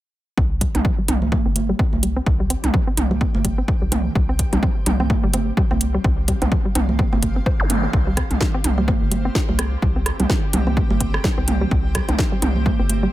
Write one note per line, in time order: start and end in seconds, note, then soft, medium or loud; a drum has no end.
0.38 0.67 C2 medium
0.38 13.13 C4 medium
0.38 0.46 C4 loud
0.38 kick loud
0.53 13.13 G4 medium
0.61 0.70 G3 loud
0.61 kick medium
0.61 closed hi-hat medium
0.75 0.81 C2 medium
0.75 0.81 C4 medium
0.75 closed hi-hat soft
0.75 mid tom medium
0.85 kick loud
0.98 1.05 G3 loud
1.08 1.38 C2 medium
1.08 1.17 C4 loud
1.08 closed hi-hat medium
1.08 mid tom medium
1.16 4.96 G5 medium
1.21 13.13 C5 medium
1.21 high conga soft
1.32 1.41 G3 loud
1.32 kick loud
1.32 high conga medium
1.46 1.73 G1 loud
1.46 1.52 C4 medium
1.56 closed hi-hat medium
1.56 high conga medium
1.69 1.76 G3 loud
1.79 1.88 C4 loud
1.79 kick loud
1.93 2.21 C2 medium
1.93 high conga medium
2.03 2.12 G3 medium
2.03 closed hi-hat medium
2.17 2.23 C4 loud
2.26 2.56 C2 medium
2.26 kick loud
2.40 2.47 G3 loud
2.50 2.59 C4 loud
2.50 closed hi-hat medium
2.64 2.70 C2 medium
2.64 closed hi-hat soft
2.64 mid tom medium
2.74 2.82 G3 loud
2.74 kick loud
2.87 2.94 C4 loud
2.97 3.26 C2 medium
2.97 closed hi-hat medium
2.97 mid tom medium
3.11 3.17 G3 loud
3.11 high conga medium
3.21 3.30 C4 loud
3.21 kick loud
3.35 3.62 G1 loud
3.35 high conga medium
3.45 3.53 G3 loud
3.45 kick medium
3.45 closed hi-hat medium
3.58 3.65 C4 loud
3.68 kick loud
3.82 4.10 C2 medium
3.82 3.88 G3 loud
3.92 4.01 C4 loud
3.92 closed hi-hat medium
3.92 mid tom medium
3.92 high conga medium
4.15 4.45 C2 medium
4.15 4.24 G3 loud
4.15 kick loud
4.29 4.35 C4 loud
4.39 kick medium
4.39 closed hi-hat medium
4.53 4.59 C2 medium
4.53 4.59 G3 loud
4.53 closed hi-hat soft
4.53 mid tom medium
4.63 4.71 C4 loud
4.63 kick loud
4.86 5.15 C2 medium
4.86 4.95 G3 loud
4.86 closed hi-hat medium
4.86 mid tom medium
4.94 8.74 F5 medium
5.00 5.06 C4 loud
5.00 high conga soft
5.10 kick loud
5.10 high conga medium
5.24 5.51 G1 loud
5.24 5.30 G3 loud
5.33 5.42 C4 loud
5.33 closed hi-hat medium
5.33 high conga medium
5.57 5.66 G3 loud
5.57 kick loud
5.71 5.99 C2 medium
5.71 5.77 C4 loud
5.71 high conga medium
5.81 closed hi-hat medium
5.94 6.01 G3 medium
6.04 6.34 C2 medium
6.04 6.13 C4 loud
6.04 kick loud
6.28 6.37 G3 loud
6.28 kick medium
6.28 closed hi-hat medium
6.42 6.48 C2 medium
6.42 6.48 C4 loud
6.42 closed hi-hat soft
6.42 mid tom medium
6.52 kick loud
6.65 6.72 G3 medium
6.75 7.04 C2 medium
6.75 6.84 C4 loud
6.75 closed hi-hat medium
6.75 mid tom medium
6.89 high conga soft
6.99 7.08 G3 medium
6.99 kick loud
7.13 7.40 G1 loud
7.13 7.19 C4 loud
7.13 high conga medium
7.23 7.26 A#3 medium
7.23 kick medium
7.23 closed hi-hat medium
7.36 7.40 C4 medium
7.46 7.55 C5 loud
7.46 kick loud
7.60 7.87 G1 loud
7.60 zap medium
7.70 7.76 A#3 medium
7.70 closed hi-hat medium
7.70 mid tom medium
7.70 high conga medium
7.83 7.88 C4 medium
7.93 8.23 C2 loud
7.93 kick loud
8.07 8.13 G3 loud
8.17 8.26 C4 loud
8.17 kick medium
8.17 cross-stick medium
8.17 closed hi-hat medium
8.31 8.37 C2 medium
8.31 closed hi-hat soft
8.31 mid tom medium
8.41 8.49 G3 loud
8.41 kick loud
8.41 snare medium
8.54 8.61 C4 loud
8.64 8.93 C2 medium
8.64 closed hi-hat medium
8.64 mid tom medium
8.72 12.52 G5 medium
8.78 8.84 G3 loud
8.78 high conga soft
8.88 8.97 C4 loud
8.88 kick loud
8.88 high conga medium
9.02 9.29 G1 loud
9.12 9.20 G3 loud
9.12 closed hi-hat medium
9.12 high conga medium
9.25 9.32 C4 loud
9.35 kick loud
9.35 snare medium
9.49 9.76 C2 medium
9.49 9.55 G3 loud
9.49 high conga medium
9.59 9.68 C4 loud
9.59 cross-stick medium
9.59 closed hi-hat medium
9.82 10.12 C2 loud
9.82 9.91 G3 loud
9.82 kick loud
9.96 10.02 C4 loud
10.06 cross-stick medium
10.06 closed hi-hat medium
10.20 10.26 C2 medium
10.20 10.26 G3 loud
10.20 closed hi-hat soft
10.20 mid tom medium
10.30 10.38 C4 loud
10.30 kick loud
10.30 snare medium
10.53 10.82 C2 medium
10.53 10.62 G3 loud
10.53 closed hi-hat medium
10.53 mid tom medium
10.67 10.73 C4 loud
10.67 high conga soft
10.77 kick loud
10.90 11.18 G1 loud
10.90 10.97 G3 loud
10.90 high conga medium
11.00 11.09 C4 loud
11.00 kick medium
11.00 closed hi-hat medium
11.14 cross-stick medium
11.24 11.33 G3 loud
11.24 kick loud
11.24 snare medium
11.38 11.65 C2 medium
11.38 11.44 C4 loud
11.48 closed hi-hat medium
11.48 mid tom medium
11.48 high conga medium
11.61 11.68 G3 loud
11.71 12.00 C2 medium
11.71 11.80 C4 loud
11.71 kick loud
11.95 12.04 G3 loud
11.95 kick medium
11.95 cross-stick medium
11.95 closed hi-hat medium
12.09 12.15 C2 medium
12.09 12.15 C4 loud
12.09 closed hi-hat soft
12.09 mid tom medium
12.19 kick loud
12.19 snare medium
12.32 12.39 G3 loud
12.42 12.71 C2 medium
12.42 12.51 C4 loud
12.42 closed hi-hat medium
12.42 mid tom medium
12.49 13.13 F5 medium
12.56 high conga soft
12.66 12.75 G3 loud
12.66 kick loud
12.66 high conga medium
12.79 13.07 G1 loud
12.79 12.86 C4 loud
12.89 closed hi-hat medium
12.89 high conga medium
13.03 13.10 G3 loud